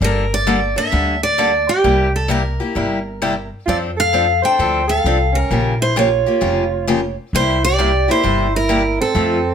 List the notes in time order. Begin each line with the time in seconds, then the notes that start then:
0.01 G1 D3 G3 A#3 D4 A4 A#4
0.34 D5
0.47 D3 G3 A#3 D4 A4
0.76 A#3 D4 A4 E5
0.91 D2 D3 G3 A#3 D4 A4
1.23 D5
1.38 D3 G3 A#3 D4 A4
1.69 G4
1.84 C2 C3 G3 A#3 E4 G4
2.16 A4
2.28 C3 G3 A#3 E4 G4 A#4
2.60 A#3 E4 G4
2.75 G1 C3 G3 A#3 E4 G4
3.22 C3 G3 A#3 E4 G4
3.66 F2 F3 C4 D4 F4 A4 D5
3.97 A4 F5
4.13 F3 C4 D4 A4
4.42 C4 D4 A4 C5 G5
4.59 D2 F3 C4 D4 A4
4.88 A4 F5
5.04 C2 F3 C4 D4 A4
5.32 C#4 A#4
5.51 A#1 C#3 F3 A#3 F4 G4
5.81 E4 C5
5.96 C#3 F3 A#3 F4 G4 C#5
6.26 A#3 F4 G4
6.41 F1 C#3 F3 A#3 F4 G4
6.87 C#3 F3 A#3 F4 G4
7.33 C2 C3 G3 A#3 E4 G4 C5
7.65 G4 D5
7.78 C3 G3 A#3 E4 G4
8.08 A#3 E4 G4 C5
8.23 G1 C3 G3 A#3 E4 G4
8.55 E4 A#4
8.69 C3 G3 A#3 E4 G4
9.00 C4 A4
9.15 F2 F3 A3 C4 F4 A4